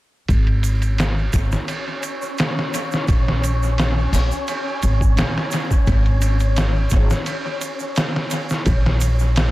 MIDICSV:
0, 0, Header, 1, 4, 480
1, 0, Start_track
1, 0, Tempo, 697674
1, 202, Time_signature, 4, 2, 24, 8
1, 6545, End_track
2, 0, Start_track
2, 0, Title_t, "Synth texture"
2, 0, Program_c, 0, 99
2, 195, Note_on_c, 0, 73, 76
2, 197, Note_on_c, 0, 61, 78
2, 6545, Note_off_c, 0, 61, 0
2, 6545, Note_off_c, 0, 73, 0
2, 6545, End_track
3, 0, Start_track
3, 0, Title_t, "Upright bass"
3, 0, Program_c, 1, 32
3, 198, Note_on_c, 1, 32, 81
3, 899, Note_off_c, 1, 32, 0
3, 918, Note_on_c, 1, 32, 68
3, 1032, Note_off_c, 1, 32, 0
3, 2121, Note_on_c, 1, 34, 81
3, 2820, Note_off_c, 1, 34, 0
3, 2836, Note_on_c, 1, 34, 69
3, 2951, Note_off_c, 1, 34, 0
3, 3324, Note_on_c, 1, 32, 71
3, 3536, Note_off_c, 1, 32, 0
3, 3557, Note_on_c, 1, 34, 69
3, 3671, Note_off_c, 1, 34, 0
3, 4040, Note_on_c, 1, 32, 87
3, 4739, Note_off_c, 1, 32, 0
3, 4759, Note_on_c, 1, 32, 76
3, 4872, Note_off_c, 1, 32, 0
3, 5960, Note_on_c, 1, 34, 90
3, 6545, Note_off_c, 1, 34, 0
3, 6545, End_track
4, 0, Start_track
4, 0, Title_t, "Drums"
4, 196, Note_on_c, 9, 51, 69
4, 198, Note_on_c, 9, 36, 85
4, 204, Note_on_c, 9, 82, 31
4, 265, Note_off_c, 9, 51, 0
4, 266, Note_off_c, 9, 36, 0
4, 273, Note_off_c, 9, 82, 0
4, 323, Note_on_c, 9, 51, 40
4, 392, Note_off_c, 9, 51, 0
4, 434, Note_on_c, 9, 51, 56
4, 440, Note_on_c, 9, 82, 74
4, 503, Note_off_c, 9, 51, 0
4, 509, Note_off_c, 9, 82, 0
4, 563, Note_on_c, 9, 51, 39
4, 565, Note_on_c, 9, 82, 38
4, 632, Note_off_c, 9, 51, 0
4, 634, Note_off_c, 9, 82, 0
4, 677, Note_on_c, 9, 51, 75
4, 678, Note_on_c, 9, 82, 35
4, 687, Note_on_c, 9, 38, 96
4, 746, Note_off_c, 9, 51, 0
4, 747, Note_off_c, 9, 82, 0
4, 756, Note_off_c, 9, 38, 0
4, 914, Note_on_c, 9, 82, 75
4, 915, Note_on_c, 9, 51, 55
4, 918, Note_on_c, 9, 36, 73
4, 983, Note_off_c, 9, 82, 0
4, 984, Note_off_c, 9, 51, 0
4, 986, Note_off_c, 9, 36, 0
4, 1043, Note_on_c, 9, 82, 43
4, 1050, Note_on_c, 9, 38, 45
4, 1112, Note_off_c, 9, 82, 0
4, 1119, Note_off_c, 9, 38, 0
4, 1156, Note_on_c, 9, 82, 29
4, 1157, Note_on_c, 9, 51, 81
4, 1224, Note_off_c, 9, 82, 0
4, 1225, Note_off_c, 9, 51, 0
4, 1396, Note_on_c, 9, 51, 57
4, 1396, Note_on_c, 9, 82, 66
4, 1465, Note_off_c, 9, 51, 0
4, 1465, Note_off_c, 9, 82, 0
4, 1526, Note_on_c, 9, 82, 46
4, 1595, Note_off_c, 9, 82, 0
4, 1636, Note_on_c, 9, 82, 37
4, 1640, Note_on_c, 9, 51, 70
4, 1650, Note_on_c, 9, 38, 103
4, 1705, Note_off_c, 9, 82, 0
4, 1709, Note_off_c, 9, 51, 0
4, 1719, Note_off_c, 9, 38, 0
4, 1781, Note_on_c, 9, 38, 44
4, 1849, Note_off_c, 9, 38, 0
4, 1884, Note_on_c, 9, 51, 57
4, 1884, Note_on_c, 9, 82, 77
4, 1953, Note_off_c, 9, 51, 0
4, 1953, Note_off_c, 9, 82, 0
4, 2005, Note_on_c, 9, 82, 43
4, 2021, Note_on_c, 9, 38, 40
4, 2074, Note_off_c, 9, 82, 0
4, 2090, Note_off_c, 9, 38, 0
4, 2117, Note_on_c, 9, 82, 31
4, 2121, Note_on_c, 9, 36, 92
4, 2122, Note_on_c, 9, 51, 70
4, 2185, Note_off_c, 9, 82, 0
4, 2190, Note_off_c, 9, 36, 0
4, 2190, Note_off_c, 9, 51, 0
4, 2260, Note_on_c, 9, 38, 47
4, 2328, Note_off_c, 9, 38, 0
4, 2364, Note_on_c, 9, 51, 54
4, 2365, Note_on_c, 9, 82, 85
4, 2433, Note_off_c, 9, 51, 0
4, 2434, Note_off_c, 9, 82, 0
4, 2495, Note_on_c, 9, 82, 44
4, 2564, Note_off_c, 9, 82, 0
4, 2601, Note_on_c, 9, 51, 77
4, 2606, Note_on_c, 9, 82, 32
4, 2611, Note_on_c, 9, 38, 101
4, 2670, Note_off_c, 9, 51, 0
4, 2675, Note_off_c, 9, 82, 0
4, 2680, Note_off_c, 9, 38, 0
4, 2841, Note_on_c, 9, 46, 69
4, 2846, Note_on_c, 9, 82, 89
4, 2909, Note_off_c, 9, 46, 0
4, 2915, Note_off_c, 9, 82, 0
4, 2968, Note_on_c, 9, 82, 47
4, 3037, Note_off_c, 9, 82, 0
4, 3079, Note_on_c, 9, 82, 36
4, 3082, Note_on_c, 9, 51, 79
4, 3148, Note_off_c, 9, 82, 0
4, 3151, Note_off_c, 9, 51, 0
4, 3320, Note_on_c, 9, 51, 61
4, 3320, Note_on_c, 9, 82, 84
4, 3389, Note_off_c, 9, 51, 0
4, 3389, Note_off_c, 9, 82, 0
4, 3447, Note_on_c, 9, 36, 84
4, 3454, Note_on_c, 9, 82, 45
4, 3516, Note_off_c, 9, 36, 0
4, 3523, Note_off_c, 9, 82, 0
4, 3558, Note_on_c, 9, 51, 79
4, 3559, Note_on_c, 9, 82, 34
4, 3568, Note_on_c, 9, 38, 102
4, 3627, Note_off_c, 9, 51, 0
4, 3628, Note_off_c, 9, 82, 0
4, 3636, Note_off_c, 9, 38, 0
4, 3699, Note_on_c, 9, 38, 53
4, 3768, Note_off_c, 9, 38, 0
4, 3792, Note_on_c, 9, 82, 80
4, 3802, Note_on_c, 9, 51, 60
4, 3812, Note_on_c, 9, 38, 37
4, 3860, Note_off_c, 9, 82, 0
4, 3871, Note_off_c, 9, 51, 0
4, 3880, Note_off_c, 9, 38, 0
4, 3927, Note_on_c, 9, 36, 86
4, 3928, Note_on_c, 9, 82, 50
4, 3996, Note_off_c, 9, 36, 0
4, 3997, Note_off_c, 9, 82, 0
4, 4037, Note_on_c, 9, 82, 33
4, 4041, Note_on_c, 9, 36, 90
4, 4041, Note_on_c, 9, 51, 70
4, 4106, Note_off_c, 9, 82, 0
4, 4110, Note_off_c, 9, 36, 0
4, 4110, Note_off_c, 9, 51, 0
4, 4168, Note_on_c, 9, 51, 39
4, 4237, Note_off_c, 9, 51, 0
4, 4276, Note_on_c, 9, 82, 84
4, 4277, Note_on_c, 9, 51, 60
4, 4345, Note_off_c, 9, 82, 0
4, 4346, Note_off_c, 9, 51, 0
4, 4401, Note_on_c, 9, 82, 50
4, 4407, Note_on_c, 9, 51, 40
4, 4470, Note_off_c, 9, 82, 0
4, 4475, Note_off_c, 9, 51, 0
4, 4514, Note_on_c, 9, 82, 35
4, 4517, Note_on_c, 9, 51, 75
4, 4526, Note_on_c, 9, 38, 97
4, 4583, Note_off_c, 9, 82, 0
4, 4585, Note_off_c, 9, 51, 0
4, 4595, Note_off_c, 9, 38, 0
4, 4746, Note_on_c, 9, 82, 77
4, 4757, Note_on_c, 9, 51, 59
4, 4758, Note_on_c, 9, 36, 79
4, 4815, Note_off_c, 9, 82, 0
4, 4826, Note_off_c, 9, 51, 0
4, 4827, Note_off_c, 9, 36, 0
4, 4885, Note_on_c, 9, 82, 49
4, 4891, Note_on_c, 9, 38, 50
4, 4954, Note_off_c, 9, 82, 0
4, 4960, Note_off_c, 9, 38, 0
4, 4995, Note_on_c, 9, 82, 39
4, 4996, Note_on_c, 9, 51, 81
4, 5064, Note_off_c, 9, 82, 0
4, 5065, Note_off_c, 9, 51, 0
4, 5238, Note_on_c, 9, 51, 62
4, 5239, Note_on_c, 9, 82, 86
4, 5307, Note_off_c, 9, 51, 0
4, 5307, Note_off_c, 9, 82, 0
4, 5362, Note_on_c, 9, 82, 42
4, 5431, Note_off_c, 9, 82, 0
4, 5474, Note_on_c, 9, 82, 39
4, 5478, Note_on_c, 9, 51, 79
4, 5487, Note_on_c, 9, 38, 103
4, 5543, Note_off_c, 9, 82, 0
4, 5546, Note_off_c, 9, 51, 0
4, 5556, Note_off_c, 9, 38, 0
4, 5616, Note_on_c, 9, 38, 45
4, 5685, Note_off_c, 9, 38, 0
4, 5713, Note_on_c, 9, 82, 84
4, 5718, Note_on_c, 9, 51, 63
4, 5782, Note_off_c, 9, 82, 0
4, 5787, Note_off_c, 9, 51, 0
4, 5842, Note_on_c, 9, 82, 47
4, 5854, Note_on_c, 9, 38, 41
4, 5911, Note_off_c, 9, 82, 0
4, 5923, Note_off_c, 9, 38, 0
4, 5956, Note_on_c, 9, 51, 78
4, 5957, Note_on_c, 9, 82, 36
4, 5958, Note_on_c, 9, 36, 94
4, 6025, Note_off_c, 9, 51, 0
4, 6026, Note_off_c, 9, 82, 0
4, 6027, Note_off_c, 9, 36, 0
4, 6098, Note_on_c, 9, 38, 52
4, 6167, Note_off_c, 9, 38, 0
4, 6196, Note_on_c, 9, 82, 85
4, 6202, Note_on_c, 9, 51, 57
4, 6265, Note_off_c, 9, 82, 0
4, 6270, Note_off_c, 9, 51, 0
4, 6323, Note_on_c, 9, 82, 53
4, 6391, Note_off_c, 9, 82, 0
4, 6436, Note_on_c, 9, 82, 35
4, 6440, Note_on_c, 9, 51, 85
4, 6449, Note_on_c, 9, 38, 106
4, 6505, Note_off_c, 9, 82, 0
4, 6509, Note_off_c, 9, 51, 0
4, 6518, Note_off_c, 9, 38, 0
4, 6545, End_track
0, 0, End_of_file